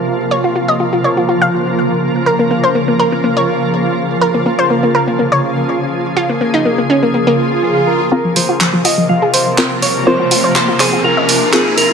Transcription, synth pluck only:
0.00 0.22 G#4 medium
0.31 0.38 C#5 medium
0.44 0.50 F4 medium
0.56 0.62 F4 medium
0.68 0.75 D#5 medium
0.80 0.87 F4 medium
0.93 0.99 F4 medium
1.04 1.11 C#5 medium
1.17 1.23 F4 medium
1.29 1.35 F4 medium
1.42 2.17 F5 medium
2.26 2.33 A#4 medium
2.39 2.45 A#3 medium
2.51 2.57 A#3 medium
2.64 2.70 C5 medium
2.75 2.82 A#3 medium
2.88 2.94 A#3 medium
2.99 3.06 A#4 medium
3.12 3.18 A#3 medium
3.24 3.31 A#3 medium
3.37 4.12 C#5 medium
4.21 4.28 A#4 loud
4.34 4.40 A#3 medium
4.46 4.53 A#3 medium
4.59 4.65 C5 medium
4.70 4.77 A#3 medium
4.83 4.89 A#3 medium
4.95 5.01 A#4 medium
5.08 5.14 A#3 medium
5.19 5.26 A#3 medium
5.32 6.07 C#5 medium
6.17 6.23 F4 medium
6.29 6.35 A#3 medium
6.41 6.48 A#3 medium
6.54 6.60 D#4 medium
6.65 6.72 A#3 medium
6.78 6.84 A#3 medium
6.90 6.97 C#4 medium
7.03 7.09 A#3 medium
7.14 7.21 A#3 medium
7.27 8.02 A#3 medium
8.12 8.18 F4 medium
8.25 8.31 F3 medium
8.36 8.43 F3 medium
8.49 8.55 F4 medium
8.60 8.67 F3 medium
8.73 8.79 F3 medium
8.85 8.92 F4 medium
8.98 9.04 F3 medium
9.09 9.16 F3 medium
9.22 9.98 G#4 medium
10.07 10.14 C5 loud
10.20 10.26 F4 medium
10.31 10.38 F4 medium
10.44 10.50 C5 medium
10.56 10.62 F4 medium
10.68 10.74 F4 medium
10.80 10.87 C5 medium
10.93 10.99 F4 medium
11.04 11.11 F4 medium
11.17 11.93 D#5 medium

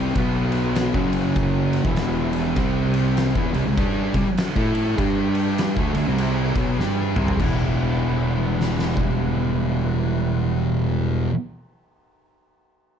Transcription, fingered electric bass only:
0.00 0.13 C2 loud
0.15 0.91 B1 medium
0.94 1.81 F#1 loud
1.85 2.53 E1 loud
2.57 3.32 C2 loud
3.35 3.53 E2 loud
3.54 3.65 C2 loud
3.67 3.77 C2 medium
3.78 4.12 G2 loud
4.15 4.26 C2 loud
4.27 muted fingered electric bass stroke soft
4.56 4.95 A2 loud
4.98 5.73 G2 loud
5.77 5.94 D2 loud
5.96 6.07 D2 loud
6.08 6.53 C2 medium
6.56 6.78 B1 loud
6.80 7.14 G2 medium
7.17 7.39 C2 medium
7.40 11.27 E1 medium

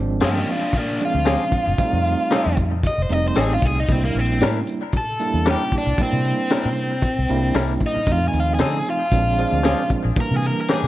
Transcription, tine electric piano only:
0.00 0.63 F3 medium
0.00 0.63 G#3 medium
0.00 0.63 C4 medium
0.00 0.63 D4 loud
1.01 1.71 F3 medium
1.01 1.71 G#3 medium
1.01 1.71 C4 medium
1.01 1.71 D4 medium
1.79 2.73 G3 medium
1.79 2.73 A3 medium
1.79 2.73 C4 medium
1.79 2.73 D#4 medium
3.09 3.80 G3 medium
3.09 3.80 A3 medium
3.09 3.80 C4 medium
3.09 3.81 D#4 medium
3.88 4.82 G3 medium
3.88 4.82 A#3 medium
3.88 4.83 D4 medium
3.88 4.83 E4 medium
5.20 5.90 G3 medium
5.20 5.90 A#3 medium
5.20 5.90 D4 medium
5.20 5.90 E4 medium
5.98 6.92 G3 medium
5.98 6.92 A#3 medium
5.98 6.92 D4 medium
5.98 6.92 E4 medium
7.29 7.99 G3 loud
7.29 7.99 A#3 medium
7.29 7.99 D4 medium
7.29 8.00 E4 medium
8.08 9.02 F3 medium
8.08 9.02 A3 medium
8.08 9.02 C4 medium
8.08 9.02 D#4 medium
9.12 9.36 F3 medium
9.12 9.36 G#3 medium
9.12 9.36 C4 medium
9.12 9.36 D4 medium
9.38 10.09 F3 medium
9.38 10.09 G#3 medium
9.38 10.09 C4 medium
9.38 10.09 D4 medium
10.17 10.88 E3 medium
10.17 10.88 G3 medium
10.17 10.88 A#3 medium
10.17 10.88 D4 medium

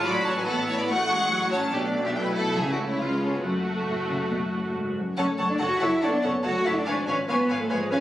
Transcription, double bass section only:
0.06 1.73 A1 medium
1.73 2.56 B1 medium
2.58 2.99 C#2 soft
3.00 3.43 C#2 soft
3.44 4.95 F#1 soft
5.18 5.26 F#1 soft
5.40 5.48 F#1 medium
5.61 5.69 F#1 soft
5.82 5.90 F#1 medium
6.04 6.12 F#1 soft
6.25 6.33 F#1 soft
6.45 6.53 F#1 soft
6.67 6.75 F#1 medium
6.88 6.96 G#1 medium
7.08 7.16 G#1 medium
7.29 7.37 G#1 medium
7.50 7.58 G#1 medium
7.71 7.79 G#1 soft
7.92 8.00 G#1 medium

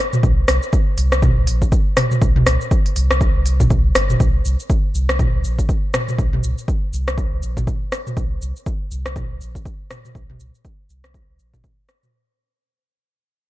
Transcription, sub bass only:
0.23 0.44 C2 loud
0.48 0.60 C2 loud
0.97 1.32 C2 medium
1.37 1.47 C2 loud
1.48 1.63 A#1 medium
1.62 1.70 G1 medium
2.22 2.42 C2 loud
2.47 2.58 C2 loud
2.96 3.30 C2 medium
3.35 3.92 C2 medium
3.95 4.16 G1 medium
4.20 4.40 C2 medium
4.45 4.56 C2 loud
4.94 5.29 C2 medium
5.34 5.43 C2 loud
5.44 5.60 A#1 medium
5.59 5.67 G1 medium
6.18 6.39 C2 loud
6.43 6.55 C2 loud
6.93 7.27 C2 medium
7.32 7.42 C2 loud
7.42 7.59 A#1 medium
7.57 7.65 G1 medium
8.17 8.37 C2 loud
8.42 8.53 C2 loud
8.91 9.26 C2 medium
9.31 9.40 C2 medium
9.41 9.57 A#1 medium
9.55 9.63 G1 medium
10.15 10.35 C2 medium
10.40 10.51 C2 loud
10.89 11.24 C2 medium
11.29 11.38 C2 loud
11.39 11.55 A#1 medium
11.54 11.62 G1 medium

